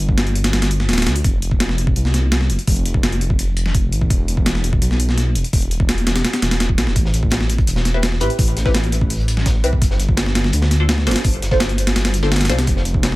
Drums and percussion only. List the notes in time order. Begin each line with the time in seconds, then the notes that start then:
0.09 kick
0.18 snare, closed hi-hat
0.27 closed hi-hat
0.35 closed hi-hat
0.44 snare, closed hi-hat
0.53 snare, closed hi-hat
0.62 snare, closed hi-hat
0.71 closed hi-hat
0.80 snare
0.89 snare, closed hi-hat
0.93 snare, closed hi-hat
0.98 snare, closed hi-hat
1.02 snare, closed hi-hat
1.07 snare, closed hi-hat
1.16 closed hi-hat
1.24 kick, closed hi-hat
1.42 closed hi-hat
1.51 kick
1.60 snare, closed hi-hat
1.69 snare
1.78 closed hi-hat
1.87 kick
1.96 closed hi-hat
2.05 snare
2.14 snare, closed hi-hat
2.32 snare, closed hi-hat
2.41 snare
2.50 closed hi-hat
2.59 closed hi-hat
2.67 kick, open hi-hat
2.77 closed hi-hat
2.85 closed hi-hat
2.94 kick
3.03 snare, closed hi-hat
3.12 closed hi-hat
3.21 closed hi-hat
3.30 kick
3.39 closed hi-hat
3.57 closed hi-hat
3.66 snare
3.75 kick, closed hi-hat
3.92 closed hi-hat
4.01 kick
4.10 kick, closed hi-hat
4.28 closed hi-hat
4.37 kick
4.46 snare, closed hi-hat
4.55 snare
4.64 closed hi-hat
4.73 kick
4.82 closed hi-hat
4.91 snare
5.00 closed hi-hat
5.09 snare
5.18 snare, closed hi-hat
5.35 closed hi-hat
5.44 closed hi-hat
5.53 kick, open hi-hat
5.62 closed hi-hat
5.71 closed hi-hat
5.80 kick
5.89 snare, closed hi-hat
5.98 closed hi-hat
6.07 snare, closed hi-hat
6.16 snare, closed hi-hat
6.25 snare, closed hi-hat
6.33 snare, closed hi-hat
6.42 snare, closed hi-hat
6.51 snare, closed hi-hat
6.60 snare, closed hi-hat
6.69 kick
6.78 snare, closed hi-hat
6.87 snare
6.96 kick, closed hi-hat
7.05 snare
7.14 closed hi-hat
7.23 kick
7.30 snare, closed hi-hat
7.41 snare
7.49 closed hi-hat
7.58 kick, closed hi-hat
7.67 closed hi-hat
7.76 snare
7.85 snare, closed hi-hat
8.03 snare, closed hi-hat
8.12 snare
8.20 closed hi-hat
8.30 closed hi-hat
8.39 kick, closed hi-hat, open hi-hat
8.48 closed hi-hat
8.57 snare, closed hi-hat
8.66 kick, snare
8.74 snare, closed hi-hat
8.84 closed hi-hat
8.92 closed hi-hat
9.01 kick
9.10 closed hi-hat, open hi-hat
9.20 closed hi-hat
9.28 closed hi-hat
9.37 snare
9.46 kick, snare, closed hi-hat
9.55 snare
9.64 closed hi-hat
9.73 kick
9.82 kick, closed hi-hat
9.83 closed hi-hat
9.91 snare
10.00 closed hi-hat
10.09 kick
10.17 snare, closed hi-hat
10.26 snare
10.35 snare, closed hi-hat
10.44 snare, closed hi-hat
10.52 closed hi-hat
10.62 snare
10.71 snare, closed hi-hat
10.89 snare, closed hi-hat
10.98 snare
11.07 snare, closed hi-hat
11.11 snare, closed hi-hat
11.16 snare, closed hi-hat
11.24 kick, closed hi-hat, open hi-hat
11.34 closed hi-hat
11.42 snare, closed hi-hat
11.51 kick, snare
11.60 snare, closed hi-hat
11.69 closed hi-hat
11.78 closed hi-hat
11.87 snare, closed hi-hat
11.96 snare, closed hi-hat, open hi-hat
12.05 snare, closed hi-hat
12.14 closed hi-hat
12.23 snare
12.31 snare, closed hi-hat
12.36 snare, closed hi-hat
12.41 snare, closed hi-hat
12.45 snare, closed hi-hat
12.49 snare, closed hi-hat
12.59 snare, closed hi-hat
12.67 kick, closed hi-hat
12.77 snare
12.85 closed hi-hat
12.94 kick
13.03 snare, closed hi-hat
13.12 snare